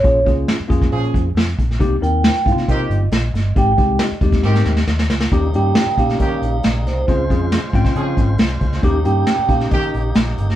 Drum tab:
HH |x-x-x-x-xxx-x-x-|x-x-xxx-x-x-x-x-|x-x-xxx---------|x-x-xxx-x-x-x-x-|
SD |----o--o----o--o|----o--o----o-o-|----o--ooooooooo|----o--o----o-o-|
BD |o-o---oo--o---o-|o-----o-o-------|o-o---oo--------|o-----o-o-------|

HH |x-x-x-x-x-x-x-x-|x-x-x-x-x-x-x-x-|
SD |----o--o----o--o|----o--o----o--o|
BD |o-o---oo--o---o-|o-----o-o-------|